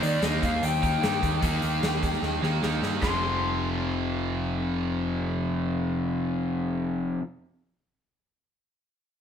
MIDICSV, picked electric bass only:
0, 0, Header, 1, 2, 480
1, 0, Start_track
1, 0, Tempo, 401070
1, 1698, Time_signature, 4, 2, 24, 8
1, 11017, End_track
2, 0, Start_track
2, 0, Title_t, "Picked electric bass"
2, 0, Program_c, 0, 34
2, 26, Note_on_c, 0, 51, 71
2, 224, Note_off_c, 0, 51, 0
2, 262, Note_on_c, 0, 39, 82
2, 461, Note_off_c, 0, 39, 0
2, 509, Note_on_c, 0, 39, 77
2, 704, Note_off_c, 0, 39, 0
2, 747, Note_on_c, 0, 39, 82
2, 1141, Note_off_c, 0, 39, 0
2, 1232, Note_on_c, 0, 43, 72
2, 1426, Note_off_c, 0, 43, 0
2, 1471, Note_on_c, 0, 39, 71
2, 1664, Note_off_c, 0, 39, 0
2, 1705, Note_on_c, 0, 39, 85
2, 1901, Note_off_c, 0, 39, 0
2, 1944, Note_on_c, 0, 39, 69
2, 2140, Note_off_c, 0, 39, 0
2, 2181, Note_on_c, 0, 39, 84
2, 2577, Note_off_c, 0, 39, 0
2, 2659, Note_on_c, 0, 39, 83
2, 2857, Note_off_c, 0, 39, 0
2, 2893, Note_on_c, 0, 39, 72
2, 3093, Note_off_c, 0, 39, 0
2, 3143, Note_on_c, 0, 39, 67
2, 3339, Note_off_c, 0, 39, 0
2, 3366, Note_on_c, 0, 43, 76
2, 3569, Note_off_c, 0, 43, 0
2, 3620, Note_on_c, 0, 29, 74
2, 8583, Note_off_c, 0, 29, 0
2, 11017, End_track
0, 0, End_of_file